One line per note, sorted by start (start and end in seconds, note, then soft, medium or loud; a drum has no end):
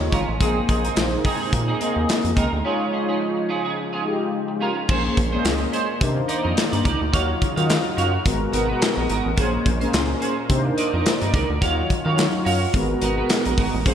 0.00 0.09 D#2 medium
0.00 0.39 C#3 medium
0.00 0.39 F3 medium
0.00 0.21 G#3 medium
0.00 2.61 G#3 medium
0.00 0.21 D#4 medium
0.00 0.36 D#4 medium
0.00 0.21 F4 medium
0.00 0.21 C#5 loud
0.00 muted clean electric guitar stroke soft
0.12 0.24 G#1 loud
0.12 0.32 C#4 medium
0.12 0.28 F4 medium
0.12 0.28 A#4 medium
0.12 kick medium
0.12 closed hi-hat medium
0.28 0.37 A1 loud
0.28 muted clean electric guitar stroke medium
0.40 0.60 A#1 loud
0.40 2.62 C3 medium
0.40 1.25 A#3 medium
0.40 2.63 A#3 medium
0.40 0.60 C4 medium
0.40 1.26 D#4 medium
0.40 2.63 D#4 medium
0.40 0.60 D#4 medium
0.40 1.26 G#4 medium
0.40 0.61 G#4 loud
0.40 1.26 C5 loud
0.40 kick loud
0.40 closed hi-hat medium
0.68 0.89 A#1 loud
0.68 0.84 C4 medium
0.68 0.84 D#4 medium
0.68 0.83 G#4 medium
0.68 kick medium
0.68 closed hi-hat medium
0.84 0.96 C4 soft
0.84 0.96 D#4 medium
0.84 0.97 G#4 medium
0.84 closed hi-hat medium
0.96 1.17 A#1 medium
0.96 muted clean electric guitar stroke soft
0.96 snare loud
0.96 clap medium
0.96 closed hi-hat medium
1.12 muted clean electric guitar stroke soft
1.25 1.40 C4 medium
1.25 1.40 D#4 medium
1.25 1.39 G#4 loud
1.25 kick medium
1.25 open hi-hat medium
1.40 1.52 C4 medium
1.40 1.52 D#4 medium
1.40 1.53 G#4 medium
1.53 1.73 A#2 loud
1.53 muted clean electric guitar stroke soft
1.53 kick loud
1.53 closed hi-hat medium
1.68 1.79 C4 medium
1.68 1.80 D#4 medium
1.68 1.81 G#4 medium
1.80 2.45 A#3 medium
1.80 1.96 C4 medium
1.80 2.45 D#4 medium
1.80 1.96 D#4 medium
1.80 2.45 G#4 medium
1.80 1.95 G#4 medium
1.80 2.45 D#5 loud
1.80 closed hi-hat medium
1.96 2.05 D#2 medium
1.96 muted clean electric guitar stroke soft
2.09 snare loud
2.09 clap medium
2.09 closed hi-hat medium
2.24 2.33 F2 medium
2.24 muted clean electric guitar stroke soft
2.24 closed hi-hat medium
2.36 2.48 C#2 medium
2.36 2.56 C4 medium
2.36 2.52 D#4 medium
2.36 2.52 A#4 medium
2.36 kick medium
2.36 closed hi-hat medium
2.53 2.61 D2 loud
2.53 muted clean electric guitar stroke soft
2.64 4.87 C#3 medium
2.64 4.87 F3 medium
2.64 3.50 G#3 medium
2.64 4.87 G#3 medium
2.64 2.84 C#4 medium
2.64 3.50 D#4 medium
2.64 4.87 D#4 medium
2.64 3.50 F4 medium
2.64 2.85 F4 loud
2.64 2.85 G#4 medium
2.64 3.50 C#5 loud
2.92 3.09 C#4 medium
2.92 3.08 F4 medium
2.92 3.07 G#4 medium
3.09 3.20 C#4 medium
3.09 3.20 F4 medium
3.09 3.21 G#4 medium
3.21 muted clean electric guitar stroke soft
3.37 muted clean electric guitar stroke soft
3.49 3.65 C#4 medium
3.49 3.65 F4 medium
3.49 3.63 G#4 medium
3.65 3.76 C#4 medium
3.65 3.77 F4 medium
3.65 3.77 G#4 medium
3.78 muted clean electric guitar stroke soft
3.93 4.04 C#4 medium
3.93 4.04 F4 medium
3.93 4.05 G#4 medium
4.04 4.69 G#3 medium
4.04 4.70 D#4 medium
4.04 4.70 F4 medium
4.04 4.70 G4 medium
4.04 muted clean electric guitar stroke soft
4.21 muted clean electric guitar stroke soft
4.48 muted clean electric guitar stroke medium
4.61 4.80 C#4 medium
4.61 4.76 F4 medium
4.61 4.76 A#4 loud
4.76 muted clean electric guitar stroke soft
4.88 5.09 A#1 loud
4.88 7.11 A#2 medium
4.88 6.00 G#3 medium
4.88 5.21 A#3 medium
4.88 6.00 A#3 medium
4.88 5.08 C#4 medium
4.88 6.00 C#4 medium
4.88 5.21 C#4 medium
4.88 5.04 G#4 medium
4.88 5.22 G#4 medium
4.88 5.22 C5 loud
4.88 5.03 C5 medium
4.88 kick loud
4.88 crash medium
5.04 muted clean electric guitar stroke soft
5.17 5.37 A#1 loud
5.17 muted clean electric guitar stroke soft
5.17 kick medium
5.17 closed hi-hat medium
5.32 5.85 A#3 medium
5.32 5.85 C#4 medium
5.32 5.46 C#4 medium
5.32 5.86 G#4 medium
5.32 5.46 G#4 medium
5.32 5.45 C5 medium
5.32 5.39 D5 medium
5.40 5.89 D#5 medium
5.45 5.65 C#2 loud
5.45 snare loud
5.45 clap loud
5.45 closed hi-hat medium
5.61 muted clean electric guitar stroke soft
5.72 5.92 C#4 medium
5.72 5.88 G#4 medium
5.72 5.87 C5 medium
5.72 closed hi-hat medium
5.88 muted clean electric guitar stroke medium
6.00 6.21 C3 loud
6.00 7.12 D#3 medium
6.00 6.86 A#3 medium
6.00 7.12 A#3 medium
6.00 6.86 D4 medium
6.00 6.86 D#4 medium
6.00 6.87 C5 medium
6.00 7.12 D5 medium
6.00 muted clean electric guitar stroke soft
6.00 kick loud
6.00 closed hi-hat medium
6.16 muted clean electric guitar stroke soft
6.28 6.44 D#4 medium
6.28 6.43 A#4 medium
6.28 6.43 D5 medium
6.28 closed hi-hat medium
6.43 6.54 F2 medium
6.43 6.55 D#4 soft
6.43 6.56 A#4 medium
6.43 6.57 D#5 medium
6.57 muted clean electric guitar stroke soft
6.57 snare loud
6.57 clap medium
6.57 closed hi-hat medium
6.72 6.81 G2 medium
6.72 6.83 D#4 medium
6.72 6.84 A#4 medium
6.72 6.84 D5 medium
6.72 closed hi-hat medium
6.84 6.96 C#2 medium
6.84 7.04 D#4 medium
6.84 7.00 A#4 medium
6.84 6.99 D5 loud
6.84 kick medium
6.84 closed hi-hat medium
7.00 7.10 D2 loud
7.00 muted clean electric guitar stroke medium
7.12 7.33 D#2 loud
7.12 8.24 C#3 medium
7.12 7.46 F#3 medium
7.12 8.25 F#3 medium
7.12 7.46 D#4 medium
7.12 8.24 D#4 medium
7.12 8.24 F4 medium
7.12 7.46 F4 medium
7.12 7.32 F#4 medium
7.12 7.28 C#5 medium
7.12 7.46 C#5 loud
7.12 7.27 F5 loud
7.12 kick loud
7.12 closed hi-hat medium
7.29 muted clean electric guitar stroke soft
7.41 muted clean electric guitar stroke soft
7.41 kick medium
7.41 closed hi-hat medium
7.56 7.77 D#3 loud
7.56 8.10 F#3 medium
7.56 8.10 D#4 medium
7.56 8.10 F4 medium
7.56 7.70 F#4 medium
7.56 7.70 C#5 medium
7.56 8.10 D#5 medium
7.56 7.69 F5 medium
7.56 closed hi-hat medium
7.70 snare loud
7.70 clap medium
7.70 closed hi-hat medium
7.85 muted clean electric guitar stroke soft
7.97 8.17 F#2 loud
7.97 8.17 F#4 medium
7.97 8.13 C#5 loud
7.97 8.12 F5 loud
7.97 closed hi-hat medium
8.13 muted clean electric guitar stroke medium
8.25 8.45 G#1 loud
8.25 9.36 B2 medium
8.25 9.10 G#3 medium
8.25 10.47 G#3 medium
8.25 9.10 B3 medium
8.25 9.36 F#4 medium
8.25 9.11 F#4 medium
8.25 11.58 A#4 medium
8.25 9.11 A#4 medium
8.25 muted clean electric guitar stroke soft
8.25 kick loud
8.25 closed hi-hat loud
8.41 muted clean electric guitar stroke soft
8.53 8.73 G#1 medium
8.53 8.69 B3 medium
8.53 8.68 F#4 medium
8.53 8.68 A#4 medium
8.53 closed hi-hat medium
8.69 8.80 B3 medium
8.69 8.81 F#4 medium
8.69 8.82 B4 medium
8.81 muted clean electric guitar stroke soft
8.81 snare loud
8.81 clap medium
8.81 closed hi-hat loud
8.97 9.06 A#1 loud
8.97 9.08 B3 medium
8.97 9.09 F#4 medium
8.97 9.10 A#4 medium
9.10 9.21 G#1 medium
9.10 9.29 B3 medium
9.10 9.25 F#4 medium
9.10 9.24 A#4 loud
9.10 closed hi-hat medium
9.25 9.34 A1 loud
9.25 muted clean electric guitar stroke medium
9.37 9.57 A#1 loud
9.37 11.60 A#2 medium
9.37 9.70 A#3 medium
9.37 9.57 C#4 medium
9.37 9.70 C#4 medium
9.37 10.49 C#4 medium
9.37 9.70 G#4 medium
9.37 9.53 G#4 loud
9.37 9.70 C5 loud
9.37 9.52 C5 loud
9.37 kick loud
9.37 closed hi-hat medium
9.53 muted clean electric guitar stroke soft
9.65 9.86 A#1 loud
9.65 muted clean electric guitar stroke soft
9.65 kick medium
9.65 closed hi-hat medium
9.81 10.34 A#3 medium
9.81 10.34 C#4 medium
9.81 9.94 C#4 medium
9.81 10.34 G#4 medium
9.81 9.94 G#4 medium
9.81 9.87 A#4 medium
9.81 9.94 C5 medium
9.81 closed hi-hat medium
9.88 10.37 C5 loud
9.93 10.14 C#2 loud
9.93 snare loud
9.93 clap medium
9.93 closed hi-hat medium
10.09 muted clean electric guitar stroke medium
10.21 10.41 C#4 medium
10.21 10.37 G#4 loud
10.21 10.36 C5 medium
10.21 closed hi-hat medium
10.37 muted clean electric guitar stroke soft
10.49 10.69 C3 loud
10.49 12.72 D#3 medium
10.49 11.35 A#3 medium
10.49 11.35 D4 medium
10.49 11.35 D#4 medium
10.49 11.35 C5 loud
10.49 11.61 D5 medium
10.49 muted clean electric guitar stroke soft
10.49 kick loud
10.49 closed hi-hat medium
10.65 muted clean electric guitar stroke medium
10.77 10.94 D#4 medium
10.77 10.93 A#4 medium
10.77 10.93 D5 medium
10.77 closed hi-hat medium
10.93 11.02 F2 medium
10.93 11.05 D#4 soft
10.93 11.06 A#4 medium
10.93 11.06 D#5 medium
11.06 muted clean electric guitar stroke soft
11.06 snare loud
11.06 clap medium
11.06 closed hi-hat loud
11.21 11.30 G2 medium
11.21 11.32 D#4 medium
11.21 11.33 A#4 medium
11.21 11.34 D5 medium
11.21 closed hi-hat medium
11.34 11.45 C#2 loud
11.34 11.53 D#4 medium
11.34 11.49 A#4 medium
11.34 11.48 D5 medium
11.34 kick loud
11.34 closed hi-hat medium
11.50 11.59 D2 loud
11.50 muted clean electric guitar stroke medium
11.61 11.82 D#2 loud
11.61 11.94 F#3 medium
11.61 12.73 F#3 medium
11.61 12.73 C#4 medium
11.61 11.94 D#4 medium
11.61 11.94 F4 medium
11.61 12.73 F4 medium
11.61 11.81 F#4 medium
11.61 11.77 C#5 loud
11.61 11.94 C#5 loud
11.61 11.76 F5 loud
11.61 kick loud
11.61 closed hi-hat loud
11.77 muted clean electric guitar stroke soft
11.90 muted clean electric guitar stroke soft
11.90 kick medium
11.90 closed hi-hat medium
12.05 12.26 D#3 loud
12.05 12.58 F#3 medium
12.05 12.58 D#4 medium
12.05 12.58 F4 medium
12.05 12.19 F#4 medium
12.05 12.18 C#5 medium
12.05 12.59 C#5 medium
12.05 12.18 F5 medium
12.18 snare loud
12.18 clap loud
12.18 closed hi-hat medium
12.33 muted clean electric guitar stroke medium
12.45 12.66 F#2 loud
12.45 12.65 F#4 medium
12.45 12.61 C#5 medium
12.45 12.60 F5 medium
12.45 open hi-hat medium
12.61 muted clean electric guitar stroke soft
12.74 12.94 G#1 loud
12.74 13.85 B2 medium
12.74 13.59 G#3 medium
12.74 13.94 G#3 medium
12.74 13.59 B3 medium
12.74 13.85 F#4 medium
12.74 13.59 F#4 medium
12.74 13.94 A#4 medium
12.74 13.59 A#4 medium
12.74 muted clean electric guitar stroke soft
12.74 kick loud
12.74 closed hi-hat medium
12.89 muted clean electric guitar stroke soft
13.02 13.22 G#1 medium
13.02 13.18 B3 medium
13.02 13.17 F#4 medium
13.02 13.17 A#4 loud
13.02 closed hi-hat medium
13.18 13.29 B3 medium
13.18 13.29 F#4 medium
13.18 13.30 B4 medium
13.29 muted clean electric guitar stroke soft
13.29 snare loud
13.29 clap medium
13.29 closed hi-hat loud
13.45 13.55 A#1 medium
13.45 13.57 B3 medium
13.45 13.58 F#4 medium
13.45 13.58 A#4 medium
13.45 closed hi-hat medium
13.57 13.69 G#1 medium
13.57 13.78 B3 medium
13.57 13.74 F#4 medium
13.57 13.72 A#4 medium
13.57 kick loud
13.57 open hi-hat medium
13.74 13.83 A1 loud
13.74 muted clean electric guitar stroke medium
13.85 13.94 A#1 loud
13.85 13.94 A#2 medium
13.85 13.94 A#3 medium
13.85 13.94 C#4 medium
13.85 13.94 G#4 medium
13.85 13.94 C5 loud
13.85 kick loud
13.85 closed hi-hat medium